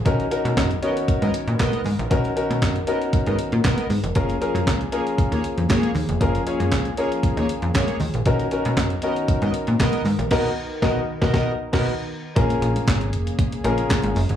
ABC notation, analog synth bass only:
X:1
M:4/4
L:1/16
Q:1/4=117
K:Blyd
V:1 name="Analog synth bass" clef=bass
B,,,2 z B,, F,,2 z3 G,, z A,, B,, z G,, A,,, | B,,,2 z B,, F,,2 z3 G,, z A,, B,, z G,, E,,, | F,,,2 z F,, C,,2 z3 D,, z E,, F,, z D,, E,,, | F,,,2 z F,, C,,2 z3 D,, z E,, F,, z D,, A,,, |
B,,,2 z B,, F,,2 z3 G,, z A,, B,, z G,, A,,, | B,,,2 z2 B,,,2 z B,,, B,,,2 z B,,,2 z3 | A,,,2 A,,,2 G,,,2 E,,,2 z2 A,,,2 z G,,, F,,, G,,, |]